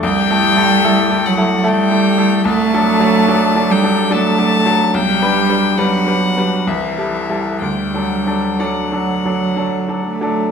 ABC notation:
X:1
M:3/4
L:1/8
Q:1/4=72
K:Dmix
V:1 name="Violin"
g3 f g2 | a3 g a2 | g2 f2 e2 | g2 f3 z |]
V:2 name="Grand piano"
(3C,, [A,EA] [A,EA] (3[A,EA] [A,EA] [A,EA] (3[A,EA] [A,EA] [A,EA] | (3C,, [F,DA] [F,DA] (3[F,DA] [F,DA] [F,DA] (3[F,DA] [F,DA] [F,DA] | (3B,,, [G,DB] [G,DB] (3[G,DB] [G,DB] [G,DB] (3C,, [G,EA] [G,EA] | (3D,, [F,DA] [F,DA] (3[F,DA] [F,DA] [F,DA] (3[F,DA] [F,DA] [F,DA] |]
V:3 name="Cello" clef=bass
G,3 F, G,2 | A,3 G, A,2 | G,2 F,2 E,2 | G,2 F,3 A, |]